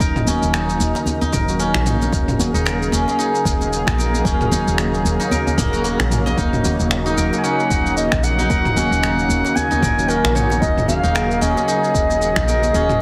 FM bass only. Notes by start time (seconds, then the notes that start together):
0.00 D#1
0.42 D#1
0.80 D#1
1.33 D#1
1.75 A#1
2.12 D#1
2.54 D#1
2.92 D#1
3.45 D#1
3.87 A#1
4.25 D#1
4.67 D#1
5.05 D#1
5.58 D#1
6.00 A#1
6.37 D#1
6.79 D#1
7.17 D#1
7.70 D#1
8.12 A#1
8.50 D#1
8.91 D#1
9.29 D#1
9.82 D#1
10.24 A#1
10.62 D#1
11.04 D#1
11.42 D#1
11.95 D#1
12.36 A#1
12.74 D#1